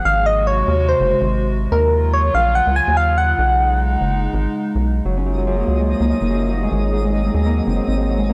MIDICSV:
0, 0, Header, 1, 6, 480
1, 0, Start_track
1, 0, Key_signature, 6, "major"
1, 0, Tempo, 416667
1, 61, Time_signature, 4, 2, 24, 8
1, 9596, End_track
2, 0, Start_track
2, 0, Title_t, "Soft synth lead"
2, 0, Program_c, 0, 80
2, 61, Note_on_c, 0, 77, 106
2, 302, Note_on_c, 0, 75, 95
2, 319, Note_off_c, 0, 77, 0
2, 542, Note_on_c, 0, 73, 96
2, 559, Note_off_c, 0, 75, 0
2, 1014, Note_off_c, 0, 73, 0
2, 1021, Note_on_c, 0, 72, 94
2, 1694, Note_off_c, 0, 72, 0
2, 1981, Note_on_c, 0, 70, 100
2, 2460, Note_on_c, 0, 73, 101
2, 2477, Note_off_c, 0, 70, 0
2, 2702, Note_on_c, 0, 77, 96
2, 2720, Note_off_c, 0, 73, 0
2, 2940, Note_on_c, 0, 78, 102
2, 2958, Note_off_c, 0, 77, 0
2, 3181, Note_on_c, 0, 80, 104
2, 3198, Note_off_c, 0, 78, 0
2, 3421, Note_on_c, 0, 77, 101
2, 3438, Note_off_c, 0, 80, 0
2, 3661, Note_on_c, 0, 78, 108
2, 3678, Note_off_c, 0, 77, 0
2, 5581, Note_off_c, 0, 78, 0
2, 9596, End_track
3, 0, Start_track
3, 0, Title_t, "Synth texture"
3, 0, Program_c, 1, 99
3, 5823, Note_on_c, 1, 63, 83
3, 5823, Note_on_c, 1, 75, 87
3, 9596, Note_off_c, 1, 63, 0
3, 9596, Note_off_c, 1, 75, 0
3, 9596, End_track
4, 0, Start_track
4, 0, Title_t, "Ambient pad"
4, 0, Program_c, 2, 92
4, 60, Note_on_c, 2, 56, 83
4, 61, Note_on_c, 2, 48, 84
4, 61, Note_on_c, 2, 66, 96
4, 1961, Note_off_c, 2, 56, 0
4, 1962, Note_off_c, 2, 48, 0
4, 1962, Note_off_c, 2, 66, 0
4, 1978, Note_on_c, 2, 54, 80
4, 1978, Note_on_c, 2, 65, 95
4, 1979, Note_on_c, 2, 49, 88
4, 3880, Note_off_c, 2, 54, 0
4, 3880, Note_off_c, 2, 65, 0
4, 3902, Note_on_c, 2, 56, 80
4, 3902, Note_on_c, 2, 63, 96
4, 5781, Note_off_c, 2, 49, 0
4, 5802, Note_off_c, 2, 56, 0
4, 5802, Note_off_c, 2, 63, 0
4, 5821, Note_on_c, 2, 58, 77
4, 5821, Note_on_c, 2, 65, 81
4, 5821, Note_on_c, 2, 68, 95
4, 7721, Note_off_c, 2, 58, 0
4, 7721, Note_off_c, 2, 65, 0
4, 7741, Note_on_c, 2, 54, 82
4, 7741, Note_on_c, 2, 60, 75
4, 9596, Note_off_c, 2, 54, 0
4, 9596, Note_off_c, 2, 60, 0
4, 9596, Note_off_c, 2, 68, 0
4, 9596, End_track
5, 0, Start_track
5, 0, Title_t, "Harp"
5, 0, Program_c, 3, 46
5, 5821, Note_on_c, 3, 54, 75
5, 5956, Note_on_c, 3, 61, 74
5, 6061, Note_on_c, 3, 42, 70
5, 6182, Note_off_c, 3, 54, 0
5, 6196, Note_on_c, 3, 54, 70
5, 6288, Note_off_c, 3, 42, 0
5, 6302, Note_on_c, 3, 42, 81
5, 6421, Note_off_c, 3, 54, 0
5, 6435, Note_on_c, 3, 54, 74
5, 6526, Note_off_c, 3, 54, 0
5, 6540, Note_on_c, 3, 54, 75
5, 6674, Note_on_c, 3, 56, 93
5, 6780, Note_on_c, 3, 53, 79
5, 6915, Note_on_c, 3, 58, 73
5, 7007, Note_off_c, 3, 42, 0
5, 7021, Note_on_c, 3, 42, 73
5, 7150, Note_off_c, 3, 58, 0
5, 7154, Note_on_c, 3, 58, 77
5, 7247, Note_off_c, 3, 42, 0
5, 7260, Note_on_c, 3, 42, 77
5, 7380, Note_off_c, 3, 53, 0
5, 7394, Note_on_c, 3, 53, 76
5, 7486, Note_off_c, 3, 54, 0
5, 7500, Note_on_c, 3, 54, 75
5, 7621, Note_off_c, 3, 56, 0
5, 7635, Note_on_c, 3, 56, 99
5, 7725, Note_off_c, 3, 56, 0
5, 7739, Note_on_c, 3, 56, 77
5, 7798, Note_off_c, 3, 42, 0
5, 7798, Note_off_c, 3, 53, 0
5, 7798, Note_off_c, 3, 54, 0
5, 7874, Note_on_c, 3, 63, 71
5, 7979, Note_on_c, 3, 44, 75
5, 8099, Note_off_c, 3, 56, 0
5, 8113, Note_on_c, 3, 56, 73
5, 8205, Note_off_c, 3, 44, 0
5, 8219, Note_on_c, 3, 44, 80
5, 8339, Note_off_c, 3, 56, 0
5, 8353, Note_on_c, 3, 56, 72
5, 8445, Note_off_c, 3, 56, 0
5, 8459, Note_on_c, 3, 56, 71
5, 8589, Note_off_c, 3, 58, 0
5, 8593, Note_on_c, 3, 58, 100
5, 8699, Note_on_c, 3, 54, 75
5, 8833, Note_on_c, 3, 60, 75
5, 8902, Note_off_c, 3, 61, 0
5, 8926, Note_off_c, 3, 44, 0
5, 8940, Note_on_c, 3, 44, 73
5, 9070, Note_off_c, 3, 60, 0
5, 9075, Note_on_c, 3, 60, 76
5, 9165, Note_off_c, 3, 44, 0
5, 9179, Note_on_c, 3, 44, 83
5, 9299, Note_off_c, 3, 54, 0
5, 9313, Note_on_c, 3, 54, 76
5, 9405, Note_off_c, 3, 56, 0
5, 9419, Note_on_c, 3, 56, 76
5, 9548, Note_off_c, 3, 58, 0
5, 9553, Note_on_c, 3, 58, 97
5, 9596, Note_off_c, 3, 44, 0
5, 9596, Note_off_c, 3, 54, 0
5, 9596, Note_off_c, 3, 56, 0
5, 9596, Note_off_c, 3, 58, 0
5, 9596, Note_off_c, 3, 60, 0
5, 9596, Note_off_c, 3, 63, 0
5, 9596, End_track
6, 0, Start_track
6, 0, Title_t, "Analog synth bass"
6, 0, Program_c, 4, 38
6, 60, Note_on_c, 4, 32, 102
6, 728, Note_off_c, 4, 32, 0
6, 780, Note_on_c, 4, 39, 94
6, 1089, Note_off_c, 4, 39, 0
6, 1154, Note_on_c, 4, 30, 90
6, 1312, Note_off_c, 4, 30, 0
6, 1394, Note_on_c, 4, 32, 81
6, 1928, Note_off_c, 4, 32, 0
6, 1979, Note_on_c, 4, 39, 104
6, 2648, Note_off_c, 4, 39, 0
6, 2699, Note_on_c, 4, 34, 94
6, 3008, Note_off_c, 4, 34, 0
6, 3074, Note_on_c, 4, 37, 94
6, 3232, Note_off_c, 4, 37, 0
6, 3314, Note_on_c, 4, 39, 81
6, 3848, Note_off_c, 4, 39, 0
6, 3901, Note_on_c, 4, 35, 102
6, 4569, Note_off_c, 4, 35, 0
6, 4620, Note_on_c, 4, 30, 98
6, 4929, Note_off_c, 4, 30, 0
6, 4994, Note_on_c, 4, 32, 90
6, 5152, Note_off_c, 4, 32, 0
6, 5476, Note_on_c, 4, 35, 90
6, 5769, Note_off_c, 4, 35, 0
6, 5821, Note_on_c, 4, 30, 102
6, 6489, Note_off_c, 4, 30, 0
6, 6540, Note_on_c, 4, 37, 96
6, 6849, Note_off_c, 4, 37, 0
6, 6916, Note_on_c, 4, 37, 87
6, 7073, Note_off_c, 4, 37, 0
6, 7155, Note_on_c, 4, 30, 77
6, 7689, Note_off_c, 4, 30, 0
6, 7740, Note_on_c, 4, 32, 102
6, 8408, Note_off_c, 4, 32, 0
6, 8459, Note_on_c, 4, 39, 93
6, 8768, Note_off_c, 4, 39, 0
6, 8834, Note_on_c, 4, 30, 88
6, 8992, Note_off_c, 4, 30, 0
6, 9074, Note_on_c, 4, 32, 80
6, 9596, Note_off_c, 4, 32, 0
6, 9596, End_track
0, 0, End_of_file